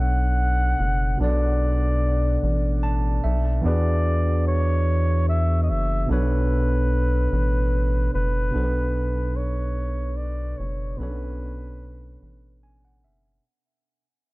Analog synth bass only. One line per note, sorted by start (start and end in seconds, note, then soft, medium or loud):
0.00 0.75 B1 loud
0.80 1.16 F#1 loud
1.20 2.38 B1 loud
2.43 3.20 A1 loud
3.25 3.61 B1 medium
3.65 5.71 E2 loud
5.70 6.06 F#1 medium
6.10 7.28 B1 loud
7.32 8.09 A1 loud
8.15 8.51 F#1 medium
8.55 10.54 B1 medium
10.60 10.95 F#1 loud
11.00 12.17 B1 loud
12.22 13.06 A1 medium
13.04 13.40 F#1 medium